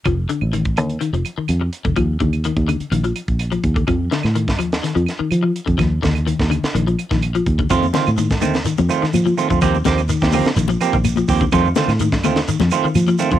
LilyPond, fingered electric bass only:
\new Staff \with { instrumentName = "Fingered electric bass" } { \clef bass \time 4/4 \key f \mixolydian \tempo 4 = 126 f,,8 r16 a,,8. ees,8 r16 f,,16 r8 f,8 r16 f,,16 | ees,8 ees,8. ees,8 r16 bes,,8 r16 bes,,8. ees,8 | f,8 r16 a,8. ees,8 r16 f,16 r8 f8 r16 f,16 | ees,8 ees,8. ees,8 r16 bes,,8 r16 bes,,8. ees,8 |
f,8 r16 a,8. ees,8 r16 f,16 r8 f8 r16 f,16 | ees,8 ees,8. ees,8 r16 bes,,8 r16 bes,,8. ees,8 | f,8 r16 a,8. ees,8 r16 f,16 r8 f8 r16 f,16 | }